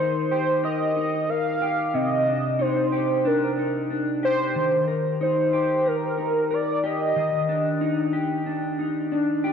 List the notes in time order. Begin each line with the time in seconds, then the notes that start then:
Already playing: D#3 A#4 C5
0.00 D#4
0.31 G4 C5
0.63 A#4 D#5
0.96 D#4
1.29 A#4 F5
1.62 G4
1.94 C3 D#5
2.27 D4
2.59 D#4 C5
2.92 G4
3.25 D4 A#4
3.58 D#4
3.90 D4
4.23 G4 C5
4.56 D#3
4.88 A#4
5.21 D#4 C5
5.53 G4
5.86 A#4
6.18 D#4
6.51 A#4 D5
6.84 G4 D#5
7.16 D#3
7.49 D4
7.81 D#4
8.13 G4
8.46 D4
8.79 D#4
9.12 D4
9.44 G4